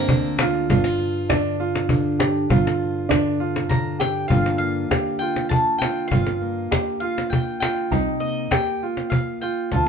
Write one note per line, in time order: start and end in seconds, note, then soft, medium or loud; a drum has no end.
0.00 1.29 D3 medium
0.00 0.70 A#3 medium
0.00 0.39 C4 medium
0.00 0.39 F4 medium
0.00 0.36 A#5 medium
0.09 0.70 D2 medium
0.09 0.66 D4 medium
0.09 cajon bass loud
0.09 shaker soft
0.24 cajon slap soft
0.24 shaker medium
0.39 0.66 F4 medium
0.39 0.68 F4 medium
0.39 cajon slap loud
0.70 0.78 G1 medium
0.70 2.50 G2 medium
0.70 0.85 D4 medium
0.70 1.29 F4 medium
0.70 cajon bass medium
0.84 1.60 F4 medium
0.84 cajon slap medium
1.00 cajon slap soft
1.30 1.89 D3 medium
1.30 1.59 D4 medium
1.30 1.60 D4 medium
1.30 cajon bass medium
1.30 cajon slap medium
1.60 1.91 D4 medium
1.60 2.19 F4 medium
1.60 cajon slap soft
1.75 cajon slap medium
1.89 3.08 D3 medium
1.89 3.10 D4 medium
1.89 cajon bass medium
2.19 2.49 G4 medium
2.19 cajon slap medium
2.50 2.59 G1 loud
2.50 4.28 G2 medium
2.50 3.09 F4 medium
2.50 3.40 F4 medium
2.50 cajon bass medium
2.67 cajon slap medium
2.81 cajon slap soft
2.97 cajon slap soft
3.09 3.68 D3 medium
3.09 3.39 D4 medium
3.09 cajon bass medium
3.09 cajon slap medium
3.40 3.69 D4 medium
3.40 3.99 F4 medium
3.40 cajon slap soft
3.56 cajon slap medium
3.69 4.29 D3 medium
3.69 4.27 D4 medium
3.69 4.00 A#5 medium
3.69 cajon bass medium
4.00 4.30 G4 medium
4.00 4.28 G5 medium
4.00 cajon slap medium
4.28 4.39 G1 medium
4.28 4.89 G2 medium
4.28 7.92 D3 medium
4.28 4.60 A#3 medium
4.28 6.08 D4 medium
4.28 4.89 F4 medium
4.28 4.57 F5 medium
4.28 cajon bass medium
4.32 6.09 F4 medium
4.46 cajon slap medium
4.58 6.41 A#3 medium
4.58 5.19 F5 medium
4.89 5.21 G4 medium
4.89 muted steel-string acoustic guitar stroke medium
4.89 cajon bass medium
4.89 cajon slap medium
5.19 5.80 F4 medium
5.19 5.48 G5 medium
5.36 cajon slap medium
5.49 5.78 A5 medium
5.49 muted steel-string acoustic guitar stroke medium
5.49 cajon bass medium
5.78 6.10 F4 medium
5.78 6.07 G5 medium
5.78 cajon slap medium
6.08 6.70 G2 medium
6.08 6.71 F4 medium
6.08 6.99 F5 medium
6.08 cajon bass medium
6.12 6.20 G1 medium
6.26 cajon slap medium
6.41 7.89 A#3 medium
6.71 7.01 G4 medium
6.71 muted steel-string acoustic guitar stroke medium
6.71 cajon bass medium
6.71 cajon slap medium
7.00 7.60 F4 medium
7.00 7.29 F5 medium
7.18 cajon slap medium
7.30 7.59 G5 medium
7.30 muted steel-string acoustic guitar stroke medium
7.30 cajon bass medium
7.60 7.92 F4 medium
7.60 8.18 G5 medium
7.60 cajon slap medium
7.91 8.00 C2 medium
7.91 8.50 C3 medium
7.91 8.51 D#4 medium
7.91 cajon bass medium
8.20 9.69 A#3 medium
8.20 8.53 D#5 medium
8.51 8.82 G4 medium
8.51 9.08 G5 medium
8.51 muted steel-string acoustic guitar stroke medium
8.51 cajon bass medium
8.51 cajon slap medium
8.83 9.41 F4 medium
8.97 cajon slap medium
9.10 9.41 F5 medium
9.10 muted steel-string acoustic guitar stroke medium
9.10 cajon bass medium
9.42 9.71 F4 medium
9.42 9.72 G5 medium
9.71 9.89 D2 medium
9.71 9.82 D2 medium
9.71 9.89 F4 medium
9.71 9.89 A5 medium
9.71 cajon bass medium
9.71 cajon slap soft